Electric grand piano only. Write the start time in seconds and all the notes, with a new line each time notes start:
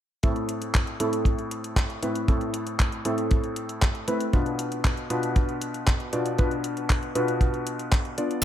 0.23 A2 A3 C4 E4 A4
1.00 A2 A3 C4 E4 A4
2.02 A2 A3 C4 E4 B4
2.28 A2 A3 C4 E4 A4
3.05 A2 A3 C4 E4 A4
4.08 A3 C4 E4 B4
4.33 B2 B3 D4 F4 B4
5.10 B2 B3 D4 F4 B4
6.13 B2 B3 D4 F4 D5
6.38 B2 B3 D4 F4 B4
7.15 B2 B3 D4 F4 B4
8.18 B3 D4 F4 D5